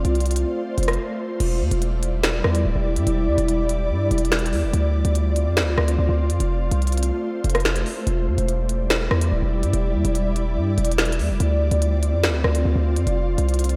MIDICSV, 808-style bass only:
0, 0, Header, 1, 2, 480
1, 0, Start_track
1, 0, Tempo, 416667
1, 1615, Time_signature, 4, 2, 24, 8
1, 15855, End_track
2, 0, Start_track
2, 0, Title_t, "808-style bass"
2, 0, Program_c, 0, 38
2, 55, Note_on_c, 0, 36, 104
2, 516, Note_off_c, 0, 36, 0
2, 896, Note_on_c, 0, 29, 105
2, 1126, Note_off_c, 0, 29, 0
2, 1616, Note_on_c, 0, 28, 111
2, 1855, Note_on_c, 0, 40, 102
2, 1872, Note_off_c, 0, 28, 0
2, 1969, Note_off_c, 0, 40, 0
2, 1975, Note_on_c, 0, 28, 107
2, 2782, Note_off_c, 0, 28, 0
2, 2815, Note_on_c, 0, 40, 107
2, 3045, Note_off_c, 0, 40, 0
2, 3054, Note_on_c, 0, 26, 111
2, 3170, Note_off_c, 0, 26, 0
2, 3175, Note_on_c, 0, 28, 106
2, 3414, Note_on_c, 0, 43, 100
2, 3432, Note_off_c, 0, 28, 0
2, 3529, Note_off_c, 0, 43, 0
2, 3534, Note_on_c, 0, 28, 112
2, 3775, Note_on_c, 0, 40, 105
2, 3792, Note_off_c, 0, 28, 0
2, 3889, Note_off_c, 0, 40, 0
2, 3894, Note_on_c, 0, 28, 107
2, 4495, Note_on_c, 0, 43, 99
2, 4512, Note_off_c, 0, 28, 0
2, 4723, Note_off_c, 0, 43, 0
2, 4734, Note_on_c, 0, 28, 114
2, 5214, Note_on_c, 0, 40, 104
2, 5231, Note_off_c, 0, 28, 0
2, 5334, Note_on_c, 0, 28, 103
2, 5352, Note_off_c, 0, 40, 0
2, 5449, Note_off_c, 0, 28, 0
2, 5454, Note_on_c, 0, 38, 117
2, 5800, Note_off_c, 0, 38, 0
2, 5814, Note_on_c, 0, 38, 110
2, 6295, Note_on_c, 0, 41, 101
2, 6312, Note_off_c, 0, 38, 0
2, 6474, Note_on_c, 0, 38, 101
2, 6492, Note_off_c, 0, 41, 0
2, 6646, Note_off_c, 0, 38, 0
2, 6655, Note_on_c, 0, 38, 107
2, 6885, Note_off_c, 0, 38, 0
2, 6895, Note_on_c, 0, 38, 113
2, 7010, Note_off_c, 0, 38, 0
2, 7015, Note_on_c, 0, 38, 108
2, 7255, Note_on_c, 0, 41, 98
2, 7272, Note_off_c, 0, 38, 0
2, 7369, Note_off_c, 0, 41, 0
2, 7374, Note_on_c, 0, 29, 116
2, 7720, Note_off_c, 0, 29, 0
2, 7736, Note_on_c, 0, 36, 103
2, 8196, Note_off_c, 0, 36, 0
2, 8575, Note_on_c, 0, 29, 110
2, 9036, Note_off_c, 0, 29, 0
2, 9295, Note_on_c, 0, 28, 117
2, 9534, Note_on_c, 0, 40, 103
2, 9552, Note_off_c, 0, 28, 0
2, 9649, Note_off_c, 0, 40, 0
2, 9655, Note_on_c, 0, 28, 105
2, 10461, Note_off_c, 0, 28, 0
2, 10494, Note_on_c, 0, 40, 108
2, 10725, Note_off_c, 0, 40, 0
2, 10735, Note_on_c, 0, 26, 110
2, 10847, Note_off_c, 0, 26, 0
2, 10854, Note_on_c, 0, 28, 108
2, 11094, Note_on_c, 0, 43, 101
2, 11112, Note_off_c, 0, 28, 0
2, 11209, Note_off_c, 0, 43, 0
2, 11214, Note_on_c, 0, 28, 117
2, 11454, Note_on_c, 0, 40, 100
2, 11471, Note_off_c, 0, 28, 0
2, 11568, Note_off_c, 0, 40, 0
2, 11574, Note_on_c, 0, 28, 107
2, 12174, Note_on_c, 0, 43, 99
2, 12191, Note_off_c, 0, 28, 0
2, 12403, Note_off_c, 0, 43, 0
2, 12415, Note_on_c, 0, 28, 111
2, 12895, Note_on_c, 0, 40, 102
2, 12912, Note_off_c, 0, 28, 0
2, 13014, Note_on_c, 0, 28, 103
2, 13032, Note_off_c, 0, 40, 0
2, 13129, Note_off_c, 0, 28, 0
2, 13135, Note_on_c, 0, 38, 115
2, 13480, Note_off_c, 0, 38, 0
2, 13494, Note_on_c, 0, 38, 108
2, 13974, Note_on_c, 0, 41, 103
2, 13992, Note_off_c, 0, 38, 0
2, 14154, Note_on_c, 0, 38, 99
2, 14171, Note_off_c, 0, 41, 0
2, 14325, Note_off_c, 0, 38, 0
2, 14334, Note_on_c, 0, 38, 113
2, 14565, Note_off_c, 0, 38, 0
2, 14574, Note_on_c, 0, 38, 110
2, 14687, Note_off_c, 0, 38, 0
2, 14694, Note_on_c, 0, 38, 110
2, 14935, Note_on_c, 0, 41, 103
2, 14952, Note_off_c, 0, 38, 0
2, 15049, Note_off_c, 0, 41, 0
2, 15055, Note_on_c, 0, 29, 118
2, 15401, Note_off_c, 0, 29, 0
2, 15414, Note_on_c, 0, 36, 105
2, 15855, Note_off_c, 0, 36, 0
2, 15855, End_track
0, 0, End_of_file